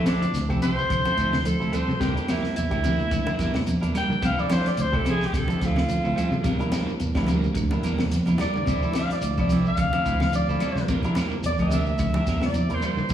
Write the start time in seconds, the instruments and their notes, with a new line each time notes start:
Already playing: fingered electric bass D2, reed electric piano F3 A3 C4 E4
0.06 clean electric guitar F3 C4 E4 A4, alto saxophone D4, snare, closed hi-hat, high conga, claves, shekere
0.22 clean electric guitar E3, closed hi-hat, shekere
0.33 fingered electric bass D2, snare, closed hi-hat, shekere
0.49 fingered electric bass C2, reed electric piano F3 A3 C4 G4, clean electric guitar C4 E4 A4, kick, high conga, claves, shekere
0.62 clean electric guitar C3 F3 C4 E4 A4, alto saxophone C5, closed hi-hat, high conga, shekere
0.79 shekere
0.89 fingered electric bass C2, clean electric guitar D3, kick, closed hi-hat, claves, shekere
1.05 reed electric piano F3 A3 C4 E4, clean electric guitar C4 E4 A4, closed hi-hat, high conga, shekere
1.17 fingered electric bass D2, clean electric guitar F3 C4 E4 A4, kick, closed hi-hat, shekere
1.33 clean electric guitar E3, snare, low conga, claves, shekere
1.45 alto saxophone A4, closed hi-hat, high conga, shekere
1.60 fingered electric bass D2, reed electric piano F3 A3 C4 E4, clean electric guitar C4 E4 A4, shekere
1.72 clean electric guitar F3 G3 C4 A4, alto saxophone C5, muted fingered electric bass stroke, closed hi-hat, claves, shekere
1.88 fingered electric bass D3, shekere
2.00 fingered electric bass E2, clean electric guitar C3 G3 A#3 D4 A#4, alto saxophone G4, kick, snare, closed hi-hat, low conga, shekere
2.15 reed electric piano G3 A#3 D4 E4, clean electric guitar A#3 D4 A#4, closed hi-hat, shekere
2.28 clean electric guitar G3 A#3 D4 A#4, alto saxophone E4, snare, closed hi-hat, high conga, claves, shekere
2.43 clean electric guitar E3, snare, shekere
2.56 fingered electric bass E2, alto saxophone E4, closed hi-hat, shekere
2.70 fingered electric bass D2, reed electric piano G3 A#3 D4 G4, clean electric guitar A#3 D4 A#4, kick, closed hi-hat, claves, shekere
2.83 clean electric guitar C3 G3 A#3 D4 A#4, closed hi-hat, high conga, shekere
3.00 shekere
3.11 fingered electric bass D2, clean electric guitar D3, kick, closed hi-hat, claves, shekere
3.26 reed electric piano G3 A#3 D4 E4, clean electric guitar A#3 D4 A#4, high conga, shekere
3.39 fingered electric bass E2, clean electric guitar G3 A#3 D4 A#4, kick, snare, closed hi-hat, shekere
3.54 clean electric guitar E3, snare, low conga, claves, shekere
3.67 closed hi-hat, high conga, shekere
3.81 fingered electric bass E2, reed electric piano G3 A#3 D4 E4, clean electric guitar A#3 D4 A#4, closed hi-hat, shekere
3.94 clean electric guitar G3 A#3 D4 A#4, alto saxophone G5, muted fingered electric bass stroke, snare, closed hi-hat, claves, shekere
4.10 fingered electric bass E3, shekere
4.22 fingered electric bass D2, clean electric guitar C3 C4 E4 A4, alto saxophone F5, muted clean electric guitar stroke, kick, closed hi-hat, low conga, shekere
4.37 reed electric piano F3 A3 C4 E4, clean electric guitar C4 E4 A4, alto saxophone D5, shekere
4.49 clean electric guitar F3 C4 E4 A4, alto saxophone C5, snare, closed hi-hat, high conga, claves, shekere
4.66 clean electric guitar E3, alto saxophone D5, snare, closed hi-hat, shekere
4.77 fingered electric bass D2, alto saxophone C5, closed hi-hat, shekere
4.92 fingered electric bass C2, reed electric piano F3 A3 C4 G4, clean electric guitar C4 E4 A4, kick, claves, shekere
4.96 alto saxophone A4
5.04 clean electric guitar C3 F3 C4 E4 A4, closed hi-hat, high conga, shekere
5.10 alto saxophone G#4
5.21 snare, shekere
5.26 alto saxophone G4
5.33 fingered electric bass C2, clean electric guitar D3, kick, snare, closed hi-hat, claves, shekere
5.38 alto saxophone A4
5.47 reed electric piano F3 A3 C4 D4, clean electric guitar C4 E4 A4, closed hi-hat, high conga, shekere
5.60 fingered electric bass D2, clean electric guitar F3 C4 E4, kick, snare, closed hi-hat, shekere
5.66 alto saxophone F4
5.76 clean electric guitar E3, snare, low conga, claves, shekere
5.89 closed hi-hat, high conga, shekere
6.04 fingered electric bass D2, reed electric piano F3 A3 C4 F4, clean electric guitar C4 E4 A4, shekere
6.16 clean electric guitar F3 G3 C4 E4 A4, muted fingered electric bass stroke, closed hi-hat, claves, shekere
6.31 fingered electric bass D3, shekere
6.43 fingered electric bass E2, clean electric guitar C3 G3 D4 A#4, muted clean electric guitar stroke, kick, closed hi-hat, low conga, shekere
6.59 reed electric piano G3 A#3 D4 E4, clean electric guitar A#3 D4 A#4, closed hi-hat, high conga, shekere
6.72 clean electric guitar G3 A#3 D4 A#4, snare, closed hi-hat, high conga, claves, shekere
6.87 clean electric guitar E3, shekere
7.00 fingered electric bass E2, closed hi-hat, shekere
7.15 fingered electric bass D2, reed electric piano G3 A#3 D4 E4, clean electric guitar A#3 D4 A#4, kick, snare, closed hi-hat, high conga, claves, shekere
7.27 clean electric guitar C3 G3 A#3 D4 A#4, closed hi-hat, high conga, shekere
7.44 shekere
7.55 fingered electric bass D2, clean electric guitar D3, kick, closed hi-hat, claves, shekere
7.71 reed electric piano G3 A#3 D4 E4, clean electric guitar D4 A#4, muted clean electric guitar stroke, high conga, shekere
7.83 fingered electric bass E2, clean electric guitar G3 A#3 D4 A#4, closed hi-hat, shekere
7.98 clean electric guitar E3, snare, low conga, claves, shekere
8.11 snare, closed hi-hat, high conga, shekere
8.26 fingered electric bass E2, reed electric piano G3 A#3 D4 E4, clean electric guitar A#3 D4 A#4, closed hi-hat, high conga, shekere
8.38 clean electric guitar G3 D4 A#4, alto saxophone D5, muted clean electric guitar stroke, muted fingered electric bass stroke, snare, closed hi-hat, high conga, claves, shekere
8.54 fingered electric bass E3, low conga, shekere
8.66 fingered electric bass D2, clean electric guitar C3 F3 C4 E4 A4, kick, closed hi-hat, low conga, shekere
8.82 reed electric piano F3 A3 C4 E4, clean electric guitar E4 A4, shekere
8.94 clean electric guitar F3 C4 E4 A4, snare, closed hi-hat, high conga, claves, shekere
8.99 alto saxophone F5
9.10 clean electric guitar E3, alto saxophone D5, snare, closed hi-hat, shekere
9.21 fingered electric bass D2, closed hi-hat, shekere
9.37 fingered electric bass C2, reed electric piano F3 A3 C4 E4, clean electric guitar C4 E4 A4, alto saxophone D5, kick, high conga, claves, shekere
9.49 clean electric guitar C3 C4 E4 A4, muted clean electric guitar stroke, closed hi-hat, high conga, shekere
9.65 alto saxophone F5, shekere
9.77 fingered electric bass C2, clean electric guitar D3, kick, closed hi-hat, high conga, claves, shekere
9.93 reed electric piano F3 A3 C4 E4, clean electric guitar C4 E4 A4, closed hi-hat, high conga, shekere
10.05 fingered electric bass D2, clean electric guitar F3 C4 E4, kick, closed hi-hat, shekere
10.20 clean electric guitar E3, snare, low conga, claves, shekere
10.32 alto saxophone D5, closed hi-hat, high conga, shekere
10.48 fingered electric bass D2, reed electric piano F3 A3 C4 E4, clean electric guitar C4 E4 A4, shekere
10.60 clean electric guitar F3 G3 C4 E4 A4, closed hi-hat, claves, shekere
10.75 fingered electric bass D3, snare, shekere
10.88 fingered electric bass E2, clean electric guitar C3 G3 A#3 D4 A#4, kick, closed hi-hat, low conga, shekere
11.03 reed electric piano G3 A#3 D4 E4, clean electric guitar A#3 D4 A#4, closed hi-hat, high conga, shekere
11.15 clean electric guitar G3 A#3 D4 A#4, snare, closed hi-hat, high conga, claves, shekere
11.31 clean electric guitar E3, shekere
11.43 fingered electric bass E2, alto saxophone D5, closed hi-hat, shekere
11.58 fingered electric bass D2, reed electric piano G3 A#3 D4, clean electric guitar A#3 D4 A#4, alto saxophone E5, kick, closed hi-hat, high conga, claves, shekere
11.62 reed electric piano G4
11.70 clean electric guitar C3 A#3 D4 A#4, muted clean electric guitar stroke, closed hi-hat, high conga, shekere
11.86 shekere
11.98 fingered electric bass D2, clean electric guitar D3, kick, closed hi-hat, high conga, claves, shekere
12.14 reed electric piano G3 A#3 D4 G4, clean electric guitar A#3 D4 A#4, high conga, shekere
12.27 fingered electric bass E2, clean electric guitar G3 A#3 D4 A#4, kick, snare, closed hi-hat, shekere
12.41 clean electric guitar E3, snare, low conga, claves, shekere
12.46 alto saxophone D5
12.54 closed hi-hat, high conga, shekere
12.69 fingered electric bass E2, reed electric piano G3 A#3 D4 E4, clean electric guitar A#3 A#4, muted clean electric guitar stroke, closed hi-hat, shekere
12.74 alto saxophone C5
12.82 clean electric guitar G3 A#3 A#4, muted fingered electric bass stroke, muted clean electric guitar stroke, closed hi-hat, claves, shekere
12.86 alto saxophone C5
12.97 fingered electric bass E3, shekere
13.09 fingered electric bass D2, kick, closed hi-hat, low conga, shekere